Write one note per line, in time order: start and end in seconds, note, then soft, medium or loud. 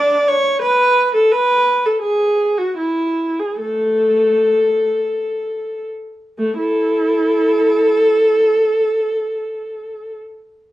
0.00 0.24 D4 medium
0.00 0.28 D5 loud
0.29 0.62 C#5 loud
0.62 1.12 B4 loud
1.15 1.31 A4 medium
1.32 1.84 B4 loud
1.85 2.02 A4 medium
2.02 2.56 G#4 medium
2.58 2.76 F#4 medium
2.77 3.37 E4 medium
3.40 3.60 G#4 medium
3.59 4.91 A3 medium
3.59 5.86 A4 medium
6.38 6.59 A3 medium
6.59 8.37 E4 medium
6.59 10.12 A4 medium